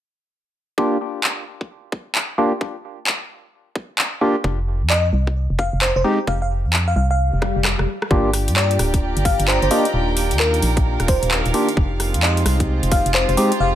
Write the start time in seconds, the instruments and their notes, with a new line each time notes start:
0.78 synth stab A#3 D4 F4 G4, kick
1.24 clap
1.61 kick
1.92 kick
2.15 clap
2.38 synth stab A#3 D4 F4 G4
2.61 kick
3.07 clap
3.75 kick
3.98 clap
4.21 synth stab A#3 D4 F4 G4
4.44 fm bass F1, kick
4.82 fm bass F2
4.90 fm electric piano D#5, clap
5.13 fm bass C2
5.27 kick
5.50 fm bass F1
5.59 fm electric piano F5, kick
5.73 fm bass F1
5.82 fm electric piano C5, clap
5.96 fm bass F1, fm electric piano C5
6.04 synth stab G#3 C4 D#4 G4
6.27 fm bass F1, fm electric piano F5, kick
6.42 fm electric piano F5
6.65 fm bass F2
6.73 clap
6.88 fm electric piano F5
6.96 fm bass C2, fm electric piano F5
7.11 fm electric piano F5
7.19 swell
7.33 fm bass F1
7.42 kick, cross-stick
7.56 fm bass F1
7.65 cross-stick, clap
7.79 fm bass F1, cross-stick
8.02 cross-stick
8.11 fm bass G1, analog synth pad A#3 D4 F4 G4, synth stab A#3 D4 F4 G4, string section G4, kick
8.34 cross-stick, open hi-hat
8.46 fm bass G2, string section D5, closed hi-hat
8.56 fm electric piano D5, clap
8.71 closed hi-hat
8.79 fm bass D1, cross-stick, open hi-hat
8.84 string section G5 A#5
8.94 kick, closed hi-hat
9.17 fm bass G1, closed hi-hat
9.25 fm electric piano F5, kick, open hi-hat
9.40 fm bass G1, closed hi-hat
9.48 fm electric piano C5, clap
9.62 fm bass G1, fm electric piano C5, closed hi-hat
9.71 string section D#3, synth stab A#3 D4 F4 G4, fm electric piano D#5, open hi-hat
9.85 closed hi-hat
9.94 fm bass D#1, string section A#4
10.17 open hi-hat
10.31 fm bass D#2, closed hi-hat
10.40 fm electric piano A#4, clap
10.45 string section F5
10.54 closed hi-hat
10.62 fm bass A#1, open hi-hat
10.77 kick, closed hi-hat
11.00 fm bass D#1, cross-stick, closed hi-hat
11.08 fm electric piano C5, kick, open hi-hat
11.23 fm bass D#1, closed hi-hat
11.31 clap
11.46 fm bass D#1, closed hi-hat
11.54 synth stab A#3 D4 F4 G4, open hi-hat
11.69 closed hi-hat
11.77 fm bass F1, analog synth pad G#3 C4 D#4, string section F4, kick
12.00 cross-stick, open hi-hat
12.14 fm bass F2, closed hi-hat
12.19 string section C5, fm electric piano D#5, clap
12.37 closed hi-hat
12.46 fm bass C2, cross-stick, open hi-hat
12.60 kick, closed hi-hat
12.83 fm bass F1, closed hi-hat
12.92 fm electric piano F5, kick, open hi-hat
13.06 fm bass F1, closed hi-hat
13.14 fm electric piano C5, clap
13.29 fm bass F1, fm electric piano C5, closed hi-hat
13.37 synth stab G#3 C4 D#4 G4, open hi-hat
13.52 closed hi-hat
13.60 fm bass F1, analog synth pad F4, fm electric piano F5